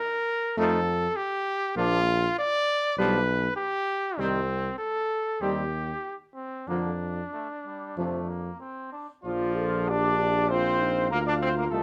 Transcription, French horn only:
0.58 0.79 A3 medium
1.76 1.98 A#3 medium
2.98 3.19 G3 medium
4.19 4.40 G3 medium
5.42 5.64 G3 medium
6.68 6.91 F3 medium
7.98 8.20 F3 medium
9.26 9.59 F4 medium
9.58 9.91 A4 medium
9.89 10.51 G4 medium
10.52 10.82 F4 medium
10.81 11.12 D#4 medium
11.12 11.83 F4 medium

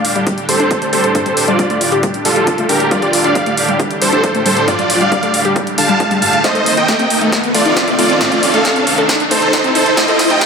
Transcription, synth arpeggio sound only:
0.16 0.22 G3 medium
0.27 0.33 G3 medium
0.49 0.55 G3 medium
0.60 0.69 D4 medium
0.82 0.88 A3 medium
0.93 1.02 G3 medium
1.15 1.18 G2 loud
1.26 1.32 G3 medium
1.48 1.54 G3 medium
1.59 1.63 G3 medium
1.70 1.79 A3 medium
1.92 1.98 G4 loud
2.03 2.12 G3 medium
2.25 2.29 G3 medium
2.36 2.42 G3 medium
2.58 2.67 A3 medium
2.69 2.75 D4 medium
2.91 2.97 G3 medium
3.02 3.11 G4 loud
3.24 3.33 D4 medium
3.35 3.41 G3 loud
3.46 3.50 A3 medium
3.69 3.74 G3 medium
3.80 3.85 G3 medium
4.02 4.08 G3 medium
4.13 4.22 D4 medium
4.35 4.41 A3 medium
4.46 4.55 G3 medium
4.68 4.71 G2 loud
4.79 4.85 G3 medium
5.01 5.07 G3 medium
5.12 5.15 G3 medium
5.23 5.32 A3 medium
5.45 5.51 G4 loud
5.56 5.65 G3 medium
5.78 5.82 D3 medium
5.89 5.95 G3 loud
6.00 6.06 D4 medium
6.11 6.20 G3 loud
6.22 6.26 G2 medium
6.44 6.50 A3 medium
6.55 6.64 A4 loud
6.77 6.86 D#4 medium
6.88 6.94 A3 loud
6.99 7.03 C4 medium
7.21 7.27 A3 medium
7.32 7.38 A3 medium
7.54 7.60 A3 medium
7.66 7.74 D#4 medium
7.88 7.94 A3 medium
7.99 8.08 A3 medium
8.21 8.24 A2 loud
8.32 8.38 A3 medium
8.54 8.60 A3 medium
8.65 8.68 A3 medium
8.76 8.85 C4 medium
8.98 9.04 A4 loud
9.09 9.18 A3 medium
9.31 9.35 A3 medium
9.42 9.48 A3 medium
9.64 9.73 C4 medium
9.75 9.81 D#4 medium
9.97 10.03 A3 medium
10.08 10.17 A4 loud
10.30 10.39 D#4 medium
10.41 10.46 A3 loud

